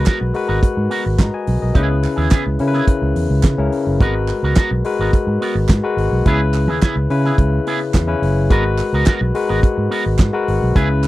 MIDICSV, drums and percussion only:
0, 0, Header, 1, 2, 480
1, 0, Start_track
1, 0, Key_signature, 5, "minor"
1, 0, Tempo, 562324
1, 1500, Time_signature, 4, 2, 24, 8
1, 9454, End_track
2, 0, Start_track
2, 0, Title_t, "Drums"
2, 50, Note_on_c, 9, 39, 87
2, 51, Note_on_c, 9, 42, 78
2, 58, Note_on_c, 9, 38, 113
2, 59, Note_off_c, 9, 39, 0
2, 59, Note_on_c, 9, 39, 92
2, 60, Note_on_c, 9, 36, 104
2, 136, Note_off_c, 9, 42, 0
2, 143, Note_off_c, 9, 38, 0
2, 144, Note_off_c, 9, 39, 0
2, 145, Note_off_c, 9, 36, 0
2, 295, Note_on_c, 9, 46, 55
2, 380, Note_off_c, 9, 46, 0
2, 536, Note_on_c, 9, 36, 101
2, 541, Note_on_c, 9, 42, 61
2, 621, Note_off_c, 9, 36, 0
2, 626, Note_off_c, 9, 42, 0
2, 777, Note_on_c, 9, 46, 60
2, 862, Note_off_c, 9, 46, 0
2, 1014, Note_on_c, 9, 36, 97
2, 1019, Note_on_c, 9, 39, 88
2, 1022, Note_off_c, 9, 39, 0
2, 1022, Note_on_c, 9, 38, 99
2, 1022, Note_on_c, 9, 39, 81
2, 1024, Note_on_c, 9, 42, 63
2, 1099, Note_off_c, 9, 36, 0
2, 1107, Note_off_c, 9, 38, 0
2, 1108, Note_off_c, 9, 39, 0
2, 1110, Note_off_c, 9, 42, 0
2, 1258, Note_on_c, 9, 46, 54
2, 1343, Note_off_c, 9, 46, 0
2, 1495, Note_on_c, 9, 36, 111
2, 1496, Note_on_c, 9, 42, 55
2, 1581, Note_off_c, 9, 36, 0
2, 1581, Note_off_c, 9, 42, 0
2, 1733, Note_on_c, 9, 46, 57
2, 1745, Note_on_c, 9, 39, 57
2, 1819, Note_off_c, 9, 46, 0
2, 1830, Note_off_c, 9, 39, 0
2, 1966, Note_on_c, 9, 42, 77
2, 1972, Note_on_c, 9, 39, 87
2, 1974, Note_off_c, 9, 39, 0
2, 1974, Note_on_c, 9, 38, 98
2, 1974, Note_on_c, 9, 39, 82
2, 1978, Note_on_c, 9, 36, 111
2, 2051, Note_off_c, 9, 42, 0
2, 2059, Note_off_c, 9, 38, 0
2, 2060, Note_off_c, 9, 39, 0
2, 2063, Note_off_c, 9, 36, 0
2, 2212, Note_on_c, 9, 46, 54
2, 2298, Note_off_c, 9, 46, 0
2, 2333, Note_on_c, 9, 38, 32
2, 2419, Note_off_c, 9, 38, 0
2, 2454, Note_on_c, 9, 36, 100
2, 2457, Note_on_c, 9, 42, 67
2, 2539, Note_off_c, 9, 36, 0
2, 2542, Note_off_c, 9, 42, 0
2, 2698, Note_on_c, 9, 46, 65
2, 2783, Note_off_c, 9, 46, 0
2, 2930, Note_on_c, 9, 39, 99
2, 2934, Note_on_c, 9, 36, 96
2, 2940, Note_off_c, 9, 39, 0
2, 2940, Note_on_c, 9, 38, 96
2, 2940, Note_on_c, 9, 39, 67
2, 2943, Note_on_c, 9, 42, 66
2, 3019, Note_off_c, 9, 36, 0
2, 3025, Note_off_c, 9, 38, 0
2, 3026, Note_off_c, 9, 39, 0
2, 3028, Note_off_c, 9, 42, 0
2, 3179, Note_on_c, 9, 46, 54
2, 3265, Note_off_c, 9, 46, 0
2, 3418, Note_on_c, 9, 36, 114
2, 3419, Note_on_c, 9, 42, 56
2, 3504, Note_off_c, 9, 36, 0
2, 3505, Note_off_c, 9, 42, 0
2, 3655, Note_on_c, 9, 39, 65
2, 3661, Note_on_c, 9, 46, 47
2, 3740, Note_off_c, 9, 39, 0
2, 3746, Note_off_c, 9, 46, 0
2, 3887, Note_on_c, 9, 42, 71
2, 3894, Note_on_c, 9, 38, 108
2, 3895, Note_on_c, 9, 39, 79
2, 3896, Note_off_c, 9, 39, 0
2, 3896, Note_on_c, 9, 39, 87
2, 3901, Note_on_c, 9, 36, 113
2, 3972, Note_off_c, 9, 42, 0
2, 3980, Note_off_c, 9, 38, 0
2, 3982, Note_off_c, 9, 39, 0
2, 3986, Note_off_c, 9, 36, 0
2, 4137, Note_on_c, 9, 46, 61
2, 4223, Note_off_c, 9, 46, 0
2, 4380, Note_on_c, 9, 36, 94
2, 4384, Note_on_c, 9, 42, 64
2, 4466, Note_off_c, 9, 36, 0
2, 4470, Note_off_c, 9, 42, 0
2, 4626, Note_on_c, 9, 46, 61
2, 4712, Note_off_c, 9, 46, 0
2, 4854, Note_on_c, 9, 39, 95
2, 4859, Note_on_c, 9, 36, 96
2, 4865, Note_on_c, 9, 38, 91
2, 4866, Note_off_c, 9, 39, 0
2, 4866, Note_on_c, 9, 39, 75
2, 4868, Note_on_c, 9, 42, 64
2, 4945, Note_off_c, 9, 36, 0
2, 4951, Note_off_c, 9, 38, 0
2, 4952, Note_off_c, 9, 39, 0
2, 4954, Note_off_c, 9, 42, 0
2, 5107, Note_on_c, 9, 46, 57
2, 5193, Note_off_c, 9, 46, 0
2, 5341, Note_on_c, 9, 42, 56
2, 5343, Note_on_c, 9, 36, 110
2, 5426, Note_off_c, 9, 42, 0
2, 5428, Note_off_c, 9, 36, 0
2, 5582, Note_on_c, 9, 39, 66
2, 5587, Note_on_c, 9, 46, 52
2, 5667, Note_off_c, 9, 39, 0
2, 5673, Note_off_c, 9, 46, 0
2, 5818, Note_on_c, 9, 42, 75
2, 5825, Note_on_c, 9, 38, 105
2, 5825, Note_on_c, 9, 39, 89
2, 5826, Note_off_c, 9, 39, 0
2, 5826, Note_on_c, 9, 36, 113
2, 5826, Note_on_c, 9, 39, 94
2, 5903, Note_off_c, 9, 42, 0
2, 5910, Note_off_c, 9, 38, 0
2, 5911, Note_off_c, 9, 36, 0
2, 5911, Note_off_c, 9, 39, 0
2, 6063, Note_on_c, 9, 46, 56
2, 6149, Note_off_c, 9, 46, 0
2, 6183, Note_on_c, 9, 38, 30
2, 6269, Note_off_c, 9, 38, 0
2, 6301, Note_on_c, 9, 36, 102
2, 6305, Note_on_c, 9, 42, 67
2, 6386, Note_off_c, 9, 36, 0
2, 6391, Note_off_c, 9, 42, 0
2, 6545, Note_on_c, 9, 46, 61
2, 6631, Note_off_c, 9, 46, 0
2, 6778, Note_on_c, 9, 36, 95
2, 6780, Note_on_c, 9, 39, 92
2, 6785, Note_on_c, 9, 38, 94
2, 6786, Note_off_c, 9, 39, 0
2, 6786, Note_on_c, 9, 39, 76
2, 6788, Note_on_c, 9, 42, 63
2, 6864, Note_off_c, 9, 36, 0
2, 6871, Note_off_c, 9, 38, 0
2, 6871, Note_off_c, 9, 39, 0
2, 6874, Note_off_c, 9, 42, 0
2, 7024, Note_on_c, 9, 46, 53
2, 7110, Note_off_c, 9, 46, 0
2, 7259, Note_on_c, 9, 42, 61
2, 7260, Note_on_c, 9, 36, 113
2, 7344, Note_off_c, 9, 42, 0
2, 7345, Note_off_c, 9, 36, 0
2, 7498, Note_on_c, 9, 39, 64
2, 7502, Note_on_c, 9, 46, 49
2, 7583, Note_off_c, 9, 39, 0
2, 7588, Note_off_c, 9, 46, 0
2, 7731, Note_on_c, 9, 42, 72
2, 7734, Note_on_c, 9, 39, 91
2, 7738, Note_on_c, 9, 38, 111
2, 7739, Note_off_c, 9, 39, 0
2, 7739, Note_on_c, 9, 39, 92
2, 7742, Note_on_c, 9, 36, 111
2, 7816, Note_off_c, 9, 42, 0
2, 7824, Note_off_c, 9, 38, 0
2, 7825, Note_off_c, 9, 39, 0
2, 7827, Note_off_c, 9, 36, 0
2, 7980, Note_on_c, 9, 46, 62
2, 8066, Note_off_c, 9, 46, 0
2, 8222, Note_on_c, 9, 36, 103
2, 8226, Note_on_c, 9, 42, 73
2, 8307, Note_off_c, 9, 36, 0
2, 8312, Note_off_c, 9, 42, 0
2, 8465, Note_on_c, 9, 46, 58
2, 8551, Note_off_c, 9, 46, 0
2, 8695, Note_on_c, 9, 39, 85
2, 8699, Note_on_c, 9, 36, 107
2, 8704, Note_on_c, 9, 38, 86
2, 8705, Note_off_c, 9, 39, 0
2, 8705, Note_on_c, 9, 39, 77
2, 8707, Note_on_c, 9, 42, 64
2, 8784, Note_off_c, 9, 36, 0
2, 8790, Note_off_c, 9, 38, 0
2, 8790, Note_off_c, 9, 39, 0
2, 8792, Note_off_c, 9, 42, 0
2, 8947, Note_on_c, 9, 46, 56
2, 9032, Note_off_c, 9, 46, 0
2, 9183, Note_on_c, 9, 36, 104
2, 9184, Note_on_c, 9, 42, 59
2, 9268, Note_off_c, 9, 36, 0
2, 9270, Note_off_c, 9, 42, 0
2, 9422, Note_on_c, 9, 39, 71
2, 9424, Note_on_c, 9, 46, 55
2, 9454, Note_off_c, 9, 39, 0
2, 9454, Note_off_c, 9, 46, 0
2, 9454, End_track
0, 0, End_of_file